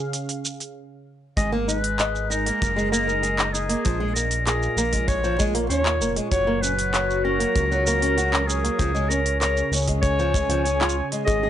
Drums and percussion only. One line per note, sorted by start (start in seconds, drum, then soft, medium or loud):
0.13 open hi-hat medium
0.13 shaker soft
0.29 open hi-hat soft
0.29 shaker soft
0.45 shaker medium
0.60 open hi-hat soft
0.60 shaker soft
1.37 kick loud
1.37 open hi-hat soft
1.37 shaker soft
1.69 shaker medium
1.84 open hi-hat medium
1.99 clap medium
1.99 open hi-hat soft
1.99 shaker soft
2.15 shaker soft
2.31 shaker medium
2.46 open hi-hat medium
2.46 shaker soft
2.62 kick loud
2.62 open hi-hat soft
2.62 shaker soft
2.78 shaker soft
2.94 shaker medium
3.09 shaker soft
3.23 open hi-hat soft
3.23 shaker soft
3.39 clap medium
3.39 shaker soft
3.55 shaker medium
3.70 open hi-hat medium
3.70 shaker soft
3.85 kick loud
3.85 open hi-hat soft
3.85 shaker soft
4.16 shaker medium
4.31 open hi-hat medium
4.31 shaker soft
4.47 clap medium
4.47 open hi-hat soft
4.47 shaker soft
4.63 shaker soft
4.78 shaker medium
4.93 kick medium
4.93 open hi-hat medium
4.93 shaker soft
5.08 kick loud
5.08 open hi-hat soft
5.08 shaker soft
5.24 shaker soft
5.40 kick loud
5.40 shaker medium
5.55 open hi-hat medium
5.55 shaker soft
5.70 open hi-hat soft
5.70 shaker soft
5.86 clap medium
5.86 shaker soft
6.02 shaker medium
6.16 open hi-hat soft
6.16 shaker soft
6.31 kick loud
6.31 open hi-hat soft
6.31 shaker soft
6.63 shaker medium
6.79 open hi-hat soft
6.79 shaker soft
6.94 clap medium
6.94 open hi-hat soft
6.94 shaker soft
7.10 shaker soft
7.40 open hi-hat medium
7.40 shaker soft
7.56 kick loud
7.56 open hi-hat soft
7.56 shaker soft
7.72 shaker soft
7.87 shaker medium
8.02 open hi-hat medium
8.02 shaker soft
8.18 open hi-hat soft
8.18 shaker soft
8.34 clap medium
8.34 shaker soft
8.50 shaker medium
8.65 open hi-hat medium
8.65 shaker soft
8.79 kick loud
8.79 open hi-hat soft
8.79 shaker soft
8.96 shaker soft
9.11 shaker medium
9.26 open hi-hat medium
9.41 clap medium
9.41 open hi-hat soft
9.41 shaker soft
9.57 shaker soft
9.73 shaker medium
9.75 shaker medium
9.77 shaker soft
9.79 shaker soft
9.82 shaker soft
9.84 shaker soft
9.86 kick medium
9.86 open hi-hat medium
9.86 shaker soft
9.88 shaker soft
10.03 kick loud
10.03 open hi-hat soft
10.03 shaker soft
10.19 shaker soft
10.34 kick loud
10.34 shaker medium
10.50 open hi-hat medium
10.50 shaker soft
10.66 open hi-hat soft
10.66 shaker soft
10.81 clap medium
10.81 shaker soft
10.89 shaker medium
11.12 open hi-hat medium
11.12 shaker soft
11.28 kick loud
11.28 open hi-hat soft
11.28 shaker soft